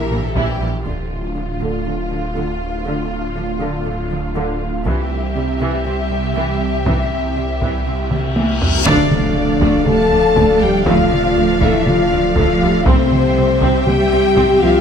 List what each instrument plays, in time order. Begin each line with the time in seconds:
Already playing: detuned saw bass A#1, cello section E3, french horn section E3 G4, analog synth pad E3 E4 G4 E5, violin section A#4 E5
0.11 double bass section A#1, viola section E3 A#3, taiko low-mid
0.25 violin section A4
0.36 double bass section A#1, viola section E3 E4, violin section G4, taiko
0.60 double bass section A#1, viola section E3 G3
0.85 detuned saw bass D1, viola section D3, cello section D3, analog synth pad A3 D4 F4 F5, violin section F4 F5, taiko
1.36 cello section D3, viola section F3
1.60 cello section D3, viola section D3, taiko
1.86 cello section D3, viola section A3
2.10 cello section D3, viola section F3
2.35 viola section D3, cello section D3
2.86 viola section D3, cello section D3
3.36 cello section D3, viola section F3
3.61 viola section D3, cello section D3
3.86 cello section D3, viola section A3
4.11 cello section D3, viola section F3
4.35 viola section D3, cello section D3
4.86 detuned saw bass C2, cello section C3, viola section E3, analog synth pad G3 C4 G4 E5, violin section G4 E5, taiko
5.36 cello section C3, viola section G3
5.60 cello section C3, viola section E3
5.86 cello section C3, viola section C4
6.10 cello section C3, viola section G3
6.35 cello section C3, viola section E3
6.86 cello section C3, viola section E3, taiko, reverse cymbal
7.36 cello section C3, viola section G3
7.62 cello section C3, viola section E3, taiko
7.86 cello section C3, viola section C4
8.11 cello section C3, viola section G3, taiko mid
8.36 cello section C3, viola section E3, taiko high
8.62 taiko low
8.86 detuned saw bass D1, double bass section D2, cello section D3, analog synth pad F3 A3 A4 F5, viola section A3 D4, french horn section D4, violin section D5 F5, taiko, impact
9.12 taiko mid
9.36 double bass section D2, viola section A3
9.61 double bass section D2, viola section A3, taiko
9.85 double bass section D2, viola section G3, cello section A3, french horn section A4, violin section A5, taiko mid
10.11 double bass section D2, viola section A3
10.36 double bass section D2, viola section A3, taiko
10.61 double bass section D2, cello section G3, viola section G3, french horn section G4, violin section G5
10.85 double bass section D2, cello section F3, viola section A3, french horn section F4, violin section F5, taiko
11.11 taiko mid
11.36 double bass section D2, viola section A3
11.61 double bass section D2, cello section E3, viola section A3, french horn section E4, violin section E5, taiko
11.86 double bass section D2, cello section F3, viola section G3, french horn section F4, violin section F5, taiko mid
12.11 double bass section D2, viola section A3
12.35 double bass section D2, cello section F3, viola section A3, french horn section F4, violin section F5, taiko
12.60 double bass section D2, viola section G3
12.85 detuned saw bass C2, double bass section C2, cello section C3, analog synth pad G3 C4 G4 E5, french horn section C4, viola section C4 G4, violin section C5 E5 G5, taiko
13.11 taiko mid
13.36 double bass section C2, viola section C4
13.61 double bass section C2, viola section C4, taiko
13.86 double bass section C2, cello section G3, viola section A#3, french horn section G4, violin section G5, taiko mid
14.11 double bass section C2, viola section C4
14.36 double bass section C2, viola section C4, taiko
14.61 double bass section C2, cello section F3, viola section A#3, french horn section F4, violin section F5